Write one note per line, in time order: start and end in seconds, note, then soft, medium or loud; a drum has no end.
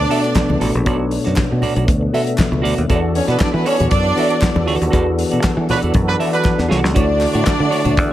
0.00 0.09 B2 medium
0.00 2.86 A3 medium
0.00 0.10 B3 medium
0.00 2.86 B3 medium
0.00 0.11 D4 medium
0.00 0.58 D4 loud
0.00 2.86 D4 medium
0.00 0.11 A4 medium
0.00 0.87 C#5 medium
0.00 0.58 D5 loud
0.09 0.69 B2 medium
0.09 0.69 B3 medium
0.09 0.69 D4 medium
0.09 0.28 F#4 medium
0.09 0.23 A4 medium
0.09 0.69 A4 medium
0.09 0.70 D5 loud
0.09 0.23 E5 medium
0.09 open hi-hat medium
0.09 muted conga soft
0.23 muted clean electric guitar stroke medium
0.23 closed hi-hat soft
0.35 muted clean electric guitar stroke soft
0.35 kick loud
0.35 snare loud
0.35 clap loud
0.35 clap medium
0.35 closed hi-hat medium
0.35 high conga medium
0.49 0.59 C#2 medium
0.49 muted clean electric guitar stroke soft
0.49 high conga medium
0.60 0.71 A1 loud
0.60 0.79 F#4 medium
0.60 0.74 A4 medium
0.60 0.74 D5 medium
0.60 open hi-hat medium
0.74 0.86 A#1 loud
0.74 muted clean electric guitar stroke medium
0.74 closed hi-hat soft
0.85 1.16 B1 loud
0.85 1.64 B2 medium
0.85 1.64 B3 medium
0.85 1.64 D4 medium
0.85 1.05 F#4 medium
0.85 1.64 A4 medium
0.85 0.99 A4 medium
0.85 1.64 C#5 medium
0.85 0.98 D5 medium
0.85 kick loud
0.85 closed hi-hat medium
0.85 muted conga medium
0.99 muted clean electric guitar stroke medium
1.11 muted clean electric guitar stroke soft
1.11 open hi-hat medium
1.24 1.35 F#2 medium
1.24 1.35 F#4 medium
1.24 1.36 A4 medium
1.24 1.36 D5 medium
1.24 snare soft
1.24 closed hi-hat soft
1.36 kick loud
1.36 snare loud
1.36 clap loud
1.36 clap medium
1.36 closed hi-hat medium
1.36 high conga medium
1.50 1.61 B2 medium
1.50 muted clean electric guitar stroke soft
1.62 1.76 F#4 medium
1.62 1.76 A4 medium
1.62 1.75 D5 loud
1.62 open hi-hat medium
1.62 low conga medium
1.76 1.85 B1 loud
1.76 1.87 F#4 medium
1.76 1.87 A4 medium
1.76 1.88 D5 medium
1.76 closed hi-hat medium
1.88 2.08 D2 loud
1.88 muted clean electric guitar stroke soft
1.88 kick loud
1.88 closed hi-hat medium
1.88 muted conga soft
1.88 low conga medium
2.01 muted clean electric guitar stroke soft
2.13 2.72 B2 medium
2.13 2.72 B3 medium
2.13 2.72 D4 medium
2.13 2.32 F#4 medium
2.13 2.73 A4 medium
2.13 2.25 A4 medium
2.13 2.73 E5 medium
2.13 2.24 E5 medium
2.13 open hi-hat medium
2.13 muted conga soft
2.25 muted clean electric guitar stroke soft
2.25 closed hi-hat soft
2.38 muted clean electric guitar stroke soft
2.38 kick loud
2.38 clap loud
2.38 closed hi-hat medium
2.38 high conga medium
2.40 snare loud
2.40 clap medium
2.51 2.61 C#2 loud
2.51 muted clean electric guitar stroke soft
2.51 high conga medium
2.62 2.75 D2 medium
2.62 2.81 F#4 loud
2.62 2.77 A4 loud
2.62 2.76 D5 loud
2.62 open hi-hat medium
2.77 2.87 D#2 loud
2.77 muted clean electric guitar stroke soft
2.77 closed hi-hat soft
2.88 3.20 E2 loud
2.88 3.67 E3 medium
2.88 6.91 E3 medium
2.88 3.67 B3 medium
2.88 6.91 B3 medium
2.88 6.91 D4 medium
2.88 3.67 F#4 medium
2.88 3.08 F#4 medium
2.88 6.91 F#4 medium
2.88 6.91 A4 medium
2.88 3.68 A4 medium
2.88 3.02 A4 medium
2.88 2.96 C#5 medium
2.88 3.01 D5 medium
2.88 kick loud
2.88 closed hi-hat medium
2.88 muted conga medium
2.96 3.71 D5 medium
3.02 muted clean electric guitar stroke medium
3.15 3.26 C#4 medium
3.15 3.26 C#5 medium
3.15 muted clean electric guitar stroke soft
3.15 open hi-hat medium
3.28 3.37 B2 loud
3.28 3.38 B3 medium
3.28 3.40 F#4 medium
3.28 3.40 A4 medium
3.28 3.38 B4 medium
3.28 3.41 D5 medium
3.28 snare soft
3.28 closed hi-hat soft
3.40 3.52 D4 medium
3.40 3.52 D5 medium
3.40 kick loud
3.40 snare loud
3.40 clap loud
3.40 clap medium
3.40 closed hi-hat medium
3.40 high conga medium
3.54 3.63 E3 loud
3.54 3.64 B3 medium
3.54 3.64 B4 medium
3.54 muted clean electric guitar stroke soft
3.65 3.86 C#4 loud
3.65 3.78 F#4 medium
3.65 3.78 A4 medium
3.65 3.86 C#5 loud
3.65 3.77 D5 medium
3.65 open hi-hat medium
3.78 3.89 E2 loud
3.78 3.93 F#4 medium
3.78 3.92 A4 medium
3.78 3.92 D5 medium
3.78 closed hi-hat soft
3.78 low conga loud
3.91 4.11 F#2 medium
3.91 4.63 D4 loud
3.91 4.63 D5 loud
3.91 kick loud
3.91 closed hi-hat medium
3.91 muted conga soft
4.05 muted clean electric guitar stroke medium
4.16 4.75 E3 medium
4.16 4.75 B3 medium
4.16 4.75 F#4 medium
4.16 4.35 F#4 medium
4.16 4.76 A4 medium
4.16 4.30 A4 medium
4.16 4.24 C#5 medium
4.16 4.29 E5 medium
4.16 open hi-hat medium
4.16 muted conga soft
4.23 4.79 D5 medium
4.30 muted clean electric guitar stroke soft
4.30 closed hi-hat soft
4.42 muted clean electric guitar stroke medium
4.42 kick loud
4.42 clap loud
4.42 closed hi-hat medium
4.42 high conga medium
4.43 snare loud
4.43 clap medium
4.55 4.68 E2 loud
4.55 muted clean electric guitar stroke soft
4.55 high conga loud
4.66 4.78 D2 medium
4.66 4.87 F#4 medium
4.66 4.80 A4 loud
4.66 4.78 D5 loud
4.66 open hi-hat medium
4.80 4.90 D#2 medium
4.80 muted clean electric guitar stroke soft
4.80 closed hi-hat soft
4.90 5.23 E2 loud
4.90 5.70 E3 medium
4.90 5.70 B3 medium
4.90 5.10 F#4 medium
4.90 5.70 F#4 medium
4.90 4.99 G#4 medium
4.90 5.06 A4 loud
4.90 5.71 B4 medium
4.90 5.05 D5 medium
4.90 kick loud
4.90 closed hi-hat medium
4.90 muted conga medium
4.99 5.74 A4 medium
5.07 muted clean electric guitar stroke soft
5.19 muted clean electric guitar stroke soft
5.19 open hi-hat medium
5.31 5.41 B2 medium
5.31 5.44 F#4 medium
5.31 5.44 A4 medium
5.31 5.45 D5 medium
5.31 closed hi-hat soft
5.43 muted fingered electric bass stroke soft
5.43 kick loud
5.43 snare loud
5.43 clap loud
5.43 clap medium
5.43 closed hi-hat medium
5.43 high conga medium
5.57 5.66 E3 loud
5.57 muted clean electric guitar stroke soft
5.69 5.78 F#3 medium
5.69 5.78 D4 medium
5.69 5.84 F#4 medium
5.69 5.83 A4 medium
5.69 5.78 B4 medium
5.69 5.83 D5 medium
5.69 open hi-hat medium
5.69 low conga medium
5.82 5.92 E2 medium
5.82 5.94 F#4 soft
5.82 5.94 A4 medium
5.82 5.95 D5 medium
5.82 closed hi-hat medium
5.94 6.14 F#2 loud
5.94 kick loud
5.94 closed hi-hat medium
5.94 muted conga medium
5.94 low conga medium
6.08 6.16 F#3 medium
6.08 6.16 D4 medium
6.08 6.16 B4 loud
6.08 muted clean electric guitar stroke medium
6.19 6.78 E3 medium
6.19 6.79 B3 medium
6.19 6.38 F#4 medium
6.19 6.79 F#4 medium
6.19 6.33 A4 loud
6.19 6.79 A4 medium
6.19 6.79 D5 loud
6.19 6.33 E5 loud
6.19 open hi-hat medium
6.19 muted conga soft
6.33 6.69 F#3 medium
6.33 6.69 D4 medium
6.33 6.69 B4 loud
6.33 muted clean electric guitar stroke soft
6.33 closed hi-hat soft
6.45 muted clean electric guitar stroke soft
6.45 kick loud
6.45 snare medium
6.45 clap loud
6.45 high conga medium
6.58 6.68 E2 medium
6.58 muted clean electric guitar stroke soft
6.58 snare medium
6.58 high conga medium
6.69 6.84 C2 medium
6.69 6.90 F#4 loud
6.69 6.82 A4 loud
6.69 6.81 D5 loud
6.69 snare medium
6.82 6.93 C#2 medium
6.82 muted clean electric guitar stroke soft
6.82 snare loud
6.94 7.25 D2 loud
6.94 7.73 D3 medium
6.94 8.13 D3 medium
6.94 7.74 A3 medium
6.94 8.13 A3 medium
6.94 7.13 D4 medium
6.94 8.13 D4 loud
6.94 7.74 E4 medium
6.94 8.13 E4 medium
6.94 7.07 F#4 medium
6.94 8.13 F#4 medium
6.94 7.74 F#4 medium
6.94 7.06 C#5 medium
6.94 8.13 D5 loud
6.94 7.74 D5 loud
6.94 kick loud
6.94 closed hi-hat medium
6.94 muted conga medium
7.08 muted clean electric guitar stroke soft
7.20 muted clean electric guitar stroke soft
7.20 clap medium
7.20 open hi-hat medium
7.20 muted conga soft
7.33 7.43 A2 medium
7.33 7.45 D4 medium
7.33 7.45 F#4 medium
7.33 7.46 C#5 medium
7.33 closed hi-hat soft
7.47 kick loud
7.47 snare loud
7.47 clap loud
7.47 closed hi-hat medium
7.47 high conga medium
7.59 7.69 D3 loud
7.59 muted clean electric guitar stroke soft
7.69 7.84 D4 medium
7.69 7.83 F#4 loud
7.69 7.83 C#5 medium
7.69 open hi-hat medium
7.84 7.98 D2 medium
7.84 7.95 D4 medium
7.84 7.96 F#4 medium
7.84 7.97 C#5 medium
7.84 closed hi-hat soft
7.84 low conga medium
7.96 8.13 E2 loud
7.96 muted clean electric guitar stroke soft
7.96 kick loud
7.96 closed hi-hat medium
7.96 muted conga medium